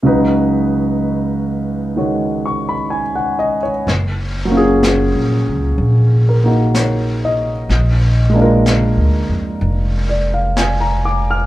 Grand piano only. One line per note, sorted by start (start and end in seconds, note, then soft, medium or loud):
0.03 3.86 C#2 soft
0.03 3.86 C#3 soft
0.03 3.87 F#3 soft
0.03 3.88 D#4 soft
0.07 3.88 B4 soft
1.96 3.87 D#3 soft
1.96 3.87 G#3 soft
1.96 3.88 F#4 soft
1.96 3.61 C#5 soft
2.46 2.74 C#6 soft
2.69 3.02 B5 soft
2.90 3.36 G#5 soft
3.15 3.56 F#5 soft
3.39 3.69 D#5 soft
3.63 3.96 C#5 soft
4.45 7.67 F#3 soft
4.45 6.42 A#3 soft
4.51 7.70 C#4 soft
4.51 7.71 F4 soft
4.57 7.72 G#4 medium
6.29 6.95 A#4 soft
6.44 7.70 A#3 soft
6.44 7.71 D#4 soft
6.44 7.71 F#4 soft
6.76 7.51 C#5 soft
7.25 7.91 D#5 soft
8.30 11.46 G#3 soft
8.30 11.46 A#3 soft
8.36 11.46 D4 soft
8.36 11.46 F4 soft
8.42 11.46 A#4 soft
10.09 10.39 D5 soft
10.34 10.67 F5 soft
10.57 11.02 G#5 soft
10.81 11.21 A#5 soft
11.05 11.34 D6 soft
11.30 11.46 F6 soft